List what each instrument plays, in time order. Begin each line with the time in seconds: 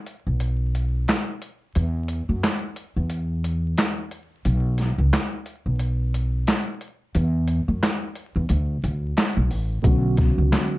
0.06 closed hi-hat
0.27 upright bass B1
0.40 closed hi-hat
0.75 closed hi-hat
1.08 snare, clap, closed hi-hat
1.42 closed hi-hat
1.75 upright bass E2, closed hi-hat
2.08 closed hi-hat
2.29 upright bass F#2
2.44 snare, clap, closed hi-hat
2.76 closed hi-hat
2.96 upright bass E2
3.10 closed hi-hat
3.44 closed hi-hat
3.78 snare, clap, closed hi-hat
4.11 closed hi-hat
4.45 upright bass B1, closed hi-hat
4.78 snare, closed hi-hat
4.98 upright bass C#2
5.13 snare, clap, closed hi-hat
5.46 closed hi-hat
5.66 upright bass B1
5.79 closed hi-hat
6.14 closed hi-hat
6.47 snare, clap, closed hi-hat
6.81 closed hi-hat
7.15 upright bass E2, closed hi-hat
7.48 closed hi-hat
7.68 upright bass F#2
7.83 snare, clap, closed hi-hat
8.15 closed hi-hat
8.36 upright bass E2
8.49 upright bass D2, closed hi-hat
8.84 upright bass D2, closed hi-hat
9.17 snare, clap, closed hi-hat
9.37 upright bass B1
9.51 upright bass A1, open hi-hat
9.82 upright bass B1, tine electric piano D3 F#3 B3 C#4 F#4, kick, closed hi-hat
10.17 kick, snare, closed hi-hat
10.38 upright bass C#2
10.53 snare, clap, closed hi-hat